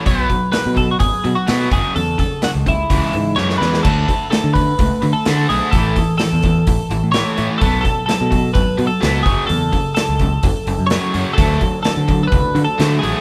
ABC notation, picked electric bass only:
X:1
M:4/4
L:1/16
Q:1/4=127
K:Dlyd
V:1 name="Picked electric bass" clef=bass
B,,,2 z3 B,,3 G,,, z B,, z B,,2 F,,, z | E,,2 z3 C,,3 C,, z G,,2 F,,2 E,,2 | D,,2 z3 D,3 C,, z D, z D,2 B,,, z | A,,,2 z3 E,,3 A,,, z A,,, A,,2 z A,, z |
B,,,2 z3 B,,3 G,,, z B,, z C,,2 F,,, z | E,,2 z3 C,,3 F,,, z F,,, F,,2 z F,, z | D,,2 z3 D,3 C,, z D, z D,2 A,,, z |]